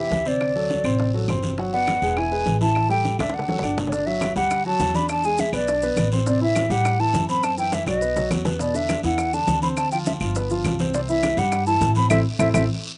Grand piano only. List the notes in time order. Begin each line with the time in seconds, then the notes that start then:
Already playing: E3 E4 G4
0.26 C3 C4 C5
0.55 F#3 F#4 A4
0.84 C3 C4 C5
1.14 F#3 F#4 A4
1.29 C3 C4 C5
1.59 F#3 F#4 F#5
1.73 B3 B4 D5
2.03 G#3 G#4 B4
2.18 E3 E4 E5
2.31 G#3 G#4 B4
2.61 E3 E4 E5
2.89 G3 G4 A4
3.19 D3 D4 D5
3.48 F#3 F#4 A4
3.63 D3 D4 D5
3.92 D3 D4
4.06 F#3 F#4
4.36 G3 G4
4.66 F#3 F#4
4.95 D4 D5
5.25 G#3 G#4
5.53 B3 B4
5.68 D4 D5
5.83 B3 B4
6.13 C4 C5
6.27 C3 C4
6.41 E3 E4
6.70 G3 G4
6.99 E3 E4
7.29 C4 C5
7.58 E3 E4
7.88 F#3 F#4
8.02 B3 B4
8.17 F#3 F#4
8.46 B3 B4
8.60 B2 B3
8.74 D3 D4
9.04 E3 E4
9.33 D3 D4
9.63 C4 C5
9.92 F3 F4
10.21 F3 F4
10.36 B3 B4
10.51 F3 F4
10.80 C4 C5
10.95 C3 C4
11.09 E3 E4
11.38 G3 G4
11.67 E3 E4
11.96 C4 C5
12.11 A3 C4 E4
12.39 A3 C4 E4
12.54 A3 C4 E4